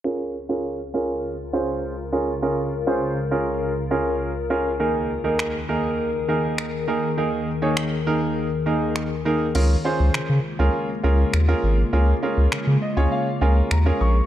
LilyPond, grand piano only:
\new Staff \with { instrumentName = "Grand piano" } { \time 4/4 \key des \major \tempo 4 = 101 << { r1 | r1 | r1 | r1 |
r1 | r4. ees''8 f''8 aes''8 bes''8 des'''8 | } \\ { <des' f' aes' bes'>8 r16 <des' f' aes' bes'>8 r16 <des' f' aes' bes'>8. r16 <des' f' aes' c''>8. r16 <des' f' aes' bes'>16 r16 | <des' f' aes' bes'>8 r16 <des' f' aes' c''>8 r16 <des' f' aes' bes'>8. r16 <des' f' aes' bes'>8. r16 <des' f' aes' bes'>16 r16 | <ees bes ees' aes' bes'>8 r16 <ees bes ees' aes' bes'>8 r16 <ees bes ees' aes' bes'>8. r16 <ees bes ees' aes' bes'>8. r16 <ees bes ees' aes' bes'>16 r16 | <ees bes ees' aes' bes'>8 r16 <ees bes ees' aes' des''>8 r16 <ees bes ees' aes' bes'>8. r16 <ees bes ees' aes' bes'>8. r16 <ees bes ees' aes' bes'>16 r16 |
<des' f' aes' bes'>16 r16 <des' f' aes' c''>8. r8 <des' f' aes' bes'>8 r16 <des' f' aes' bes'>8 r16 <des' f' aes' bes'>8 r16 | <des' f' aes' bes'>16 r16 <des' f' aes' bes'>8. r8 <des' f' aes' des''>8 r16 <des' f' aes' bes'>8 r16 <des' f' aes' bes'>8 r16 | } >> }